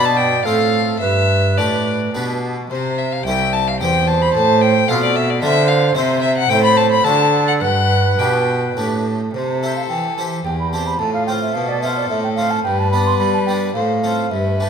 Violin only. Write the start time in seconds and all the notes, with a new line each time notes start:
0.05 A5
0.17 G5
0.45 F5
1.00 E5
1.57 D5
2.71 C5
2.98 E5
3.12 F5
3.26 G5
3.53 A5
3.67 F5
3.81 G5
4.07 A5
4.22 B5
4.34 A5
4.61 G5
4.88 F5
5.03 D5
5.16 E5
5.30 D5
5.42 E5
5.68 F5
5.95 C5
6.22 E5
6.38 F#5
6.49 G5
6.64 B5
6.77 A5
6.91 B5
7.04 A5
7.48 F#5
7.61 F#5
8.19 G5
9.34 A4
10.44 G4
11.00 F4
11.54 A4
12.65 B4
13.75 C5
14.04 A4
14.32 B4